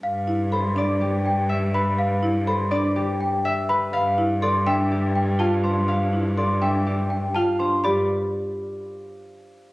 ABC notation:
X:1
M:4/4
L:1/8
Q:1/4=123
K:Gmix
V:1 name="Celesta"
f z b z2 g z b | f z b z2 g z b | f z c' g z g a c' | f z c' g z g a c' |
b z6 z |]
V:2 name="Harp"
z2 c d G2 e B- | B2 c d G2 e B | f2 d e G2 f c | f2 d e G2 f c |
d z6 z |]
V:3 name="Marimba"
z E A D z4 | z E A D z4 | z E A D z2 F D | z E A D z2 F D |
G z6 z |]
V:4 name="Cello" clef=bass
G,,8- | G,,8 | G,,8- | G,,8 |
G,, z6 z |]